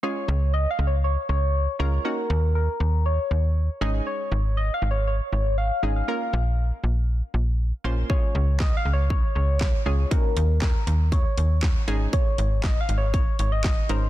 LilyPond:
<<
  \new Staff \with { instrumentName = "Soft synth lead" } { \time 4/4 \key des \major \tempo 4 = 119 des''4 \tuplet 3/2 { ees''8 f''8 des''8 } des''8 des''4 des''8 | bes'4 bes'4 des''4. r8 | des''4 \tuplet 3/2 { ees''8 f''8 des''8 } des''8 des''8 f''8. f''16~ | f''8. r2. r16 |
des''4 \tuplet 3/2 { ees''8 f''8 des''8 } des''8 des''4 des''8 | bes'4 bes'4 des''4. r8 | des''4 \tuplet 3/2 { ees''8 f''8 des''8 } des''8 des''16 ees''16 ees''8 c''8 | }
  \new Staff \with { instrumentName = "Synth pluck" } { \time 4/4 \key des \major <aes des' f' aes'>4. r2 <aes des' f' bes'>8 | <bes des' ees' ges'>4. r2 <aes des' ees' aes'>8~ | <aes des' ees' aes'>4 r2 r8 <aes des' ees' aes'>8 | <bes des' f' bes'>4. r2 <bes des' f' c''>8 |
<aes des' f' aes'>4. r2 <aes des' f' aes'>8 | <bes des' ees' ges'>4. r2 <aes des' ees' aes'>8~ | <aes des' ees' aes'>4 r2 r8 <aes des' ees' bes'>8 | }
  \new Staff \with { instrumentName = "FM bass" } { \clef bass \time 4/4 \key des \major r8 des,4 des,4 des,4 des,8 | r8 ees,4 ees,4 ees,4 aes,,8 | r8 aes,,4 aes,,4 aes,,4 aes,,8 | r8 bes,,4 bes,,4 bes,,4 bes,,8 |
r8 des,4 des,4 des,4 des,8 | r8 ees,4 ees,4 ees,4 aes,,8 | r8 aes,,4 aes,,4 aes,,4 aes,,8 | }
  \new DrumStaff \with { instrumentName = "Drums" } \drummode { \time 4/4 r4 r4 r4 r4 | r4 r4 r4 r4 | r4 r4 r4 r4 | r4 r4 r4 r4 |
bd4 <hc bd sn>4 bd4 <hc bd sn>4 | <hh bd>8 hh8 <hc hh bd sn>8 hh8 <hh bd>8 hh8 <hc hh bd sn>8 hh8 | <hh bd>8 hh8 <hc hh bd sn>8 hh8 <hh bd>8 hh8 <hc hh bd sn>8 hh8 | }
>>